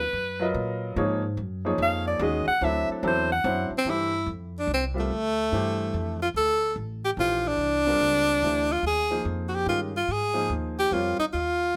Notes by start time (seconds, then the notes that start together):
Already playing: D#2 B4
0.13 F#2
0.40 F#3 F4 A#4 B4 D#5
0.54 A#2
0.96 G#2 F3 A#3 D#4 G#4 C#5
1.37 F#2
1.65 F3 A#3 D#4 G#4 C#5
1.78 F2
1.82 F5
2.07 D5
2.19 D#2 D#3 G#3 C#4 F#4 G#4 D#5
2.47 F#5, muted upright bass stroke
2.61 D2 F#3 C4 D4 E4 A4 E5
2.89 A4, muted upright bass stroke
3.03 E2 F#3 C4 D4 E4 A4
3.07 C5
3.32 F#5
3.44 F#2 F#3 C4 D4 E4 C5
3.70 muted upright bass stroke
3.78 C4
3.85 G2 E3 A3 D4 G4 C5
3.90 E4
4.26 F2
4.59 D4
4.67 C2
4.74 C4
4.94 G3 C4 F4 A#4 E5
5.00 A3
5.10 D2
5.52 G2 E3 A3 D4 G4 C5
5.94 F2
6.22 F4
6.34 D2 A4
6.76 A1
7.05 G4
7.17 A#1 E3 A3 D4 F4 G4 C5
7.48 D4
7.58 C2
7.87 G3 C4 D4 F4 A#4
8.00 C#2
8.42 D2 E3 A3 D4 G4 C5
8.72 F4
8.83 D#2
8.87 G#4
9.11 F3 A#3 D#4 G#4 C5
9.25 F2
9.49 F#4
9.55 G4
9.66 G2 D#3 G#3 C#4 F4 G4 A#4
9.96 F4
10.08 G#2 G#4
10.34 F3 A#3 D#4 G#4 C5
10.49 D#2
10.79 G4
10.91 F2 G3 C4 F4 A#4 C#5
11.18 D#4, muted upright bass stroke
11.33 D#2 F4